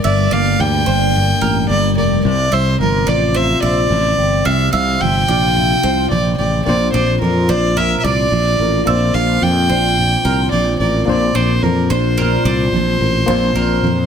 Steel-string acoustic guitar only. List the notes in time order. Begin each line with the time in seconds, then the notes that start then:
Already playing: G3 A#3 D4 A#4
0.05 G2
0.32 A#3
0.60 G3
0.87 D4
1.15 G2
1.43 A#3
1.70 G3
1.97 A#4
2.25 C3
2.52 C4
2.81 F3
3.08 F4
3.35 C3
3.63 C4
3.90 F3
4.18 G4
4.45 C3
4.74 C4
5.01 F3
5.29 F4
5.56 C3
5.84 C4
6.11 F3
6.39 G4
6.66 A#2
6.94 C4
7.22 F3
7.50 D4
7.77 A#2
8.05 C4
8.32 F3
8.60 A#4
8.87 A#2
9.15 C4
9.43 F3
9.70 D4
9.98 A#2
10.25 C4
10.53 F3
10.81 A#4
11.09 A#2
11.36 C4
11.63 F3
11.91 D4
12.19 A#2
12.46 C4
12.74 F3
13.01 A#4
13.29 A#2
13.57 C4
13.84 F3